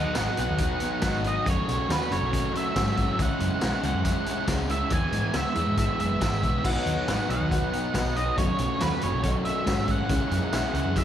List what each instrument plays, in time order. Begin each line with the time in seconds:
Already playing: overdriven electric guitar B2 F#3 B3 D#4 F#4, string machine D#4 F#4 B4 D#5, lead electric guitar F#5
0.15 fingered electric bass G#1, overdriven electric guitar B2 F#3 B3 D#4 F#4, snare, closed hi-hat, tambourine
0.37 fingered electric bass B1, overdriven electric guitar B2 F#3 B3 D#4 F#4, lead electric guitar F#5, closed hi-hat
0.49 fingered electric bass D#2
0.58 overdriven electric guitar B2 F#3 B3 D#4 F#4, kick, closed hi-hat
0.80 overdriven electric guitar B2 F#3 B3 D#4 F#4, closed hi-hat
1.02 fingered electric bass G#1, overdriven electric guitar B2 F#3 B3 D#4 F#4, kick, snare, closed hi-hat, tambourine
1.24 overdriven electric guitar B2 F#3 B3 D#4 F#4, lead electric guitar D#5, closed hi-hat
1.46 fingered electric bass F#1, overdriven electric guitar F#2 C#3 F#3 A3 C#4 F#4, string machine C#4 F#4 A4, lead electric guitar C#5, kick, closed hi-hat
1.67 fingered electric bass B1, overdriven electric guitar F#2 C#3 F#3 A3 C#4 F#4, closed hi-hat
1.89 fingered electric bass D#2, overdriven electric guitar F#2 C#3 F#3 A3 C#4 F#4, lead electric guitar B4, snare, closed hi-hat, tambourine
2.11 fingered electric bass F#1, overdriven electric guitar F#2 C#3 F#3 A3 C#4 F#4, lead electric guitar C#5, closed hi-hat
2.22 fingered electric bass B1
2.32 overdriven electric guitar F#2 C#3 F#3 A3 C#4 F#4, kick, closed hi-hat
2.53 overdriven electric guitar F#2 C#3 F#3 A3 C#4 F#4, closed hi-hat
2.57 lead electric guitar E5
2.74 overdriven electric guitar F#2 C#3 F#3 A3 C#4 F#4, fingered electric bass G#2, kick, snare, closed hi-hat, tambourine
2.96 overdriven electric guitar F#2 C#3 F#3 A3 C#4 F#4, kick, closed hi-hat
3.18 fingered electric bass C#2, overdriven electric guitar C#3 G#3 C#4 E4, string machine C#4 E4 G#4 C#5, kick, closed hi-hat
3.22 lead electric guitar F#5
3.38 fingered electric bass F#2, overdriven electric guitar C#3 G#3 C#4 E4, closed hi-hat
3.61 fingered electric bass B1, overdriven electric guitar C#3 G#3 C#4 E4, snare, closed hi-hat, tambourine
3.83 fingered electric bass C#2, overdriven electric guitar C#3 G#3 C#4 E4, lead electric guitar F#5, closed hi-hat
3.94 fingered electric bass F#2
4.04 overdriven electric guitar C#3 G#3 C#4 E4, kick, closed hi-hat
4.26 overdriven electric guitar C#3 G#3 C#4 E4, closed hi-hat
4.48 fingered electric bass C#2, overdriven electric guitar C#3 G#3 C#4 E4, kick, snare, closed hi-hat, tambourine
4.69 overdriven electric guitar C#3 G#3 C#4 E4, lead electric guitar E5, closed hi-hat
4.90 fingered electric bass E2, overdriven electric guitar E3 G#3 B3 E4, string machine B3 E4 B4, lead electric guitar G#5, kick, closed hi-hat
5.12 fingered electric bass G#2, overdriven electric guitar E3 G#3 B3 E4, closed hi-hat
5.34 fingered electric bass C#2, overdriven electric guitar E3 G#3 B3 E4, lead electric guitar E5, snare, closed hi-hat, tambourine
5.55 fingered electric bass E2, overdriven electric guitar E3 G#3 B3 E4, closed hi-hat
5.67 fingered electric bass G#2
5.77 overdriven electric guitar E3 G#3 B3 E4, lead electric guitar E5, kick, closed hi-hat
5.99 fingered electric bass F#1, overdriven electric guitar E3 G#3 B3 E4, lead electric guitar E5, closed hi-hat
6.21 fingered electric bass G#1, overdriven electric guitar E3 G#3 B3 E4, kick, snare, closed hi-hat, tambourine
6.42 fingered electric bass B1, overdriven electric guitar E3 G#3 B3 E4, kick, closed hi-hat
6.64 fingered electric bass B1, overdriven electric guitar B2 F#3 B3 D#4, string machine B3 D#4 F#4 B4, honky-tonk piano F#4 B4 D#5 F#5, lead electric guitar F#5, kick, crash
6.86 fingered electric bass D#2, overdriven electric guitar B2 F#3 B3 D#4, closed hi-hat
7.07 fingered electric bass G#1, overdriven electric guitar B2 F#3 B3 D#4, honky-tonk piano F#4 B4 D#5 G#5, snare, closed hi-hat, tambourine
7.29 fingered electric bass B1, overdriven electric guitar B2 F#3 B3 D#4, lead electric guitar F#5, closed hi-hat
7.40 fingered electric bass D#2
7.51 overdriven electric guitar B2 F#3 B3 D#4, honky-tonk piano F#4 B4 D#5 F#5, kick, closed hi-hat
7.73 overdriven electric guitar B2 F#3 B3 D#4, closed hi-hat
7.94 fingered electric bass B1, overdriven electric guitar B2 F#3 B3 D#4, honky-tonk piano F#4 B4 D#5 F#5, kick, snare, closed hi-hat, tambourine
8.15 overdriven electric guitar B2 F#3 B3 D#4, lead electric guitar D#5, closed hi-hat
8.37 fingered electric bass F#1, overdriven electric guitar F#2 C#3 F#3 A3 C#4, string machine C#4 F#4 A4, honky-tonk piano F#4 A4 C#5 F#5, lead electric guitar C#5, kick, closed hi-hat
8.58 fingered electric bass B1, overdriven electric guitar F#2 C#3 F#3 A3 C#4, closed hi-hat
8.80 fingered electric bass D#2, overdriven electric guitar F#2 C#3 F#3 A3 C#4, honky-tonk piano F#4 A4 C#5 F#5, lead electric guitar B4, snare, closed hi-hat, tambourine
9.00 fingered electric bass F#1, overdriven electric guitar F#2 C#3 F#3 A3 C#4, lead electric guitar C#5, closed hi-hat
9.04 overdriven electric guitar C#4
9.13 fingered electric bass B1
9.23 overdriven electric guitar F#2 C#3 F#3 A3 C#4, honky-tonk piano F#4 A4 C#5 D#5, lead electric guitar C#5, kick, closed hi-hat
9.45 overdriven electric guitar F#2 C#3 F#3 A3 C#4, lead electric guitar E5, closed hi-hat
9.66 overdriven electric guitar F#2 C#3 F#3 A3 C#4, fingered electric bass G#2, honky-tonk piano F#4 A4 C#5 F#5, kick, snare, closed hi-hat, tambourine
9.88 overdriven electric guitar F#2 C#3 F#3 A3 C#4, lead electric guitar F#5, kick, closed hi-hat
10.09 fingered electric bass C#2, overdriven electric guitar C#3 G#3 C#4 E4, string machine C#4 E4 G#4, honky-tonk piano E4 G#4 C#5 E5, kick, closed hi-hat
10.30 fingered electric bass F#2, overdriven electric guitar C#3 G#3 C#4 E4, closed hi-hat
10.52 fingered electric bass B1, overdriven electric guitar C#3 G#3 C#4 E4, honky-tonk piano E4 G#4 C#5 E5, snare, closed hi-hat, tambourine
10.73 fingered electric bass C#2, overdriven electric guitar C#3 G#3 C#4 E4, lead electric guitar F#5, closed hi-hat
10.85 fingered electric bass F#2
10.95 overdriven electric guitar C#3 G#3 C#4 E4, honky-tonk piano E4 G#4 C#5 E5, lead electric guitar E5, kick, closed hi-hat